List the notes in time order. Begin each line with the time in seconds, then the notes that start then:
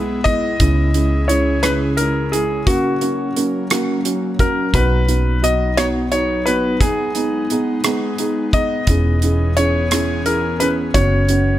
Already playing: B1 G#3 B3 E4 G#4
0.24 G#3 B3 E4 D#5, kick, closed hi-hat
0.59 C#2 C#3 G#3 C#4 E4 G#4, kick, closed hi-hat
0.94 G#3 C#4 E4, closed hi-hat
1.28 G#3 C#4 E4 C#5, closed hi-hat
1.63 G#3 C#4 E4 B4, cross-stick, closed hi-hat
1.97 G#3 C#4 E4 A#4, closed hi-hat
2.32 G#3 C#4 E4 G#4, closed hi-hat
2.66 F#1 F#3 A#3 C#4 F#4, kick, closed hi-hat
3.01 A#3 C#4 F#4, closed hi-hat
3.36 A#3 C#4 F#4, closed hi-hat
3.70 A#3 C#4 F#4, cross-stick, closed hi-hat
4.05 C#4 F#4, closed hi-hat
4.39 A#3 C#4 F#4 A#4, kick, closed hi-hat
4.72 B1 B3 D#4 F#4 B4, kick, closed hi-hat
5.08 B3 D#4 F#4, closed hi-hat
5.42 B3 D#4 F#4 D#5, closed hi-hat
5.77 B3 D#4 F#4 C#5, cross-stick, closed hi-hat
6.11 D#4 F#4 C#5, closed hi-hat
6.46 B3 D#4 F#4 B4, closed hi-hat
6.80 G#1 G#3 B3 D#4 G#4, kick, closed hi-hat
7.15 B3 D#4 G#4, closed hi-hat
7.50 B3 D#4 G#4, closed hi-hat
7.84 B3 D#4 G#4, cross-stick, closed hi-hat
8.18 D#4 G#4, closed hi-hat
8.53 B3 D#4 G#4 D#5, kick, closed hi-hat
8.86 E1 E3 C#4 E4 G#4, kick, closed hi-hat
9.22 C#4 E4 G#4, closed hi-hat
9.57 C#4 E4 G#4 C#5, closed hi-hat
9.91 C#4 E4 G#4, cross-stick, closed hi-hat
10.26 E4 G#4 A#4, closed hi-hat
10.60 C#4 E4 G#4 B4, closed hi-hat
10.94 F#1 F#3 B3 C#4 F#4 C#5, kick, closed hi-hat
11.29 B3 C#4 F#4, closed hi-hat